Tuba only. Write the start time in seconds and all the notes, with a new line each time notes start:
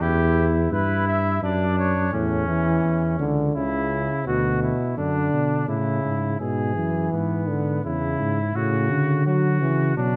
0.01 E2
0.71 G2
1.42 F#2
2.13 E2
2.84 E2
3.20 C#2
3.55 C#2
4.27 D2
4.98 F#2
5.33 B2
5.68 A2
6.04 G#2
6.40 G#2
6.77 F#2
7.13 G#2
7.84 E2
8.20 G#2
8.55 A2
8.91 D3
9.61 C#3
9.97 B2